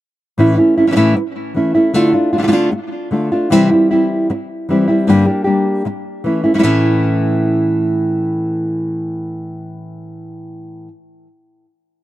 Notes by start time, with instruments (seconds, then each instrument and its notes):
0.38 nylon-string guitar A2 E3 A3 C#4 E4
0.58 nylon-string guitar A3 C#4 E4
0.77 nylon-string guitar A3 C#4 E4
0.87 nylon-string guitar E3 A3 C#4 E4
0.92 nylon-string guitar A2 A3 C#4 E4
0.96 nylon-string guitar E3 A3 C#4 E4
1.16 muted nylon-string guitar stroke
1.54 nylon-string guitar E3 A3 C#4 E4
1.75 nylon-string guitar A3 C#4 E4
1.94 nylon-string guitar D3 A3 D4 F4
2.12 nylon-string guitar A3 D4 F4
2.33 nylon-string guitar A3 D4 F4
2.38 nylon-string guitar D3 A3 D4 F4
2.42 nylon-string guitar D3 A3 D4 F4
2.48 nylon-string guitar D3 A3 D4 F4
2.52 nylon-string guitar A3 D4 F4
2.71 muted nylon-string guitar stroke
3.11 nylon-string guitar D3 A3 D4 F4
3.32 nylon-string guitar A3 D4 F4
3.50 nylon-string guitar C3 E3 G3 C4 E4
3.70 nylon-string guitar G3 C4 E4
3.91 nylon-string guitar G3 C4 E4
4.30 muted nylon-string guitar stroke
4.69 nylon-string guitar E3 G3 C4 E4
4.88 nylon-string guitar G3 C4 E4
5.07 nylon-string guitar G2 D3 G3 A#3 D4 G4
5.26 nylon-string guitar G3 A#3 D4 G4
5.44 nylon-string guitar G3 A#3 D4 G4
5.85 muted nylon-string guitar stroke
6.24 nylon-string guitar E3 A3 C#4 E4
6.44 nylon-string guitar A3 C#4 E4
6.54 nylon-string guitar E3 A3 C#4 E4
6.58 nylon-string guitar E3 A3 C#4 E4
6.63 nylon-string guitar A2 E3 A3 C#4 E4